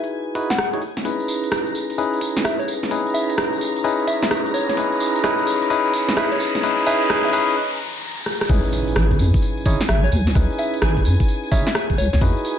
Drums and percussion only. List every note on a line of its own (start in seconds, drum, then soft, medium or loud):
0.04 closed hi-hat medium
0.35 kick loud
0.35 open hi-hat loud
0.50 snare medium
0.50 closed hi-hat medium
0.58 cross-stick loud
0.74 kick medium
0.74 closed hi-hat soft
0.82 open hi-hat medium
0.97 snare soft
0.97 closed hi-hat medium
1.05 kick loud
1.05 tambourine soft
1.20 tambourine soft
1.28 open hi-hat medium
1.28 tambourine medium
1.43 closed hi-hat medium
1.43 tambourine soft
1.52 cross-stick loud
1.52 tambourine soft
1.67 tambourine soft
1.75 open hi-hat medium
1.75 tambourine medium
1.90 closed hi-hat medium
1.90 tambourine soft
1.98 tambourine soft
2.13 tambourine soft
2.21 kick loud
2.21 open hi-hat medium
2.21 tambourine medium
2.37 snare medium
2.37 closed hi-hat medium
2.37 tambourine soft
2.45 cross-stick loud
2.45 tambourine soft
2.60 kick medium
2.60 closed hi-hat soft
2.60 tambourine soft
2.68 open hi-hat medium
2.68 tambourine medium
2.83 snare soft
2.83 closed hi-hat medium
2.83 tambourine soft
2.91 kick loud
2.91 tambourine soft
3.06 tambourine soft
3.15 open hi-hat loud
3.15 tambourine medium
3.30 closed hi-hat medium
3.30 tambourine soft
3.38 cross-stick loud
3.38 tambourine soft
3.53 tambourine soft
3.61 open hi-hat medium
3.61 tambourine medium
3.76 closed hi-hat medium
3.76 tambourine soft
3.84 tambourine soft
3.99 tambourine soft
4.07 kick loud
4.07 open hi-hat loud
4.07 tambourine medium
4.23 snare medium
4.23 closed hi-hat medium
4.23 tambourine soft
4.31 cross-stick loud
4.31 tambourine soft
4.46 closed hi-hat medium
4.46 tambourine soft
4.54 open hi-hat medium
4.54 tambourine medium
4.69 snare soft
4.69 closed hi-hat medium
4.69 tambourine soft
4.77 kick loud
4.77 tambourine soft
4.92 tambourine soft
5.00 open hi-hat loud
5.00 tambourine medium
5.15 closed hi-hat medium
5.15 tambourine soft
5.24 cross-stick loud
5.24 tambourine soft
5.39 tambourine soft
5.47 open hi-hat loud
5.47 tambourine medium
5.62 closed hi-hat medium
5.62 tambourine soft
5.70 tambourine soft
5.85 tambourine soft
5.94 kick loud
5.94 open hi-hat loud
5.94 tambourine medium
6.09 snare medium
6.09 closed hi-hat medium
6.09 tambourine soft
6.17 cross-stick loud
6.17 tambourine soft
6.32 kick medium
6.32 closed hi-hat medium
6.32 tambourine soft
6.40 open hi-hat medium
6.40 tambourine medium
6.55 snare soft
6.55 closed hi-hat medium
6.55 tambourine soft
6.63 kick loud
6.63 tambourine soft
6.78 tambourine soft
6.87 open hi-hat loud
6.87 tambourine medium
7.02 closed hi-hat medium
7.02 tambourine soft
7.10 cross-stick loud
7.10 tambourine soft
7.25 closed hi-hat soft
7.25 tambourine soft
7.33 open hi-hat loud
7.33 tambourine medium
7.48 closed hi-hat medium
7.48 tambourine soft
8.26 cross-stick medium
8.41 cross-stick medium
8.49 kick loud
8.49 closed hi-hat medium
8.49 tambourine soft
8.65 tambourine soft
8.73 open hi-hat loud
8.73 tambourine medium
8.88 closed hi-hat medium
8.88 tambourine soft
8.96 cross-stick loud
8.96 tambourine soft
9.11 kick medium
9.11 tambourine soft
9.19 open hi-hat loud
9.19 tambourine medium
9.34 kick loud
9.34 closed hi-hat soft
9.34 tambourine soft
9.42 closed hi-hat medium
9.42 tambourine soft
9.57 tambourine soft
9.66 kick loud
9.66 open hi-hat loud
9.66 tambourine medium
9.81 snare medium
9.81 closed hi-hat medium
9.81 tambourine soft
9.89 cross-stick loud
9.89 closed hi-hat medium
9.89 tambourine soft
10.04 tambourine soft
10.12 open hi-hat medium
10.12 tambourine medium
10.27 snare soft
10.27 closed hi-hat soft
10.27 tambourine soft
10.35 kick loud
10.35 closed hi-hat medium
10.35 tambourine soft
10.50 tambourine soft
10.58 open hi-hat loud
10.58 tambourine medium
10.74 closed hi-hat medium
10.74 tambourine soft
10.82 cross-stick loud
10.82 tambourine soft
10.97 kick medium
10.97 tambourine soft
11.05 open hi-hat medium
11.05 tambourine medium
11.20 kick loud
11.20 closed hi-hat soft
11.20 tambourine soft
11.28 closed hi-hat medium
11.28 tambourine soft
11.43 tambourine soft
11.52 kick loud
11.52 open hi-hat loud
11.52 tambourine medium
11.67 snare medium
11.67 closed hi-hat medium
11.67 tambourine soft
11.75 cross-stick loud
11.75 closed hi-hat medium
11.75 tambourine soft
11.90 kick medium
11.90 tambourine soft
11.98 open hi-hat medium
11.98 tambourine medium
12.13 snare soft
12.13 closed hi-hat soft
12.13 tambourine soft
12.21 kick loud
12.21 closed hi-hat medium
12.21 tambourine soft
12.37 tambourine soft
12.45 open hi-hat loud
12.45 tambourine medium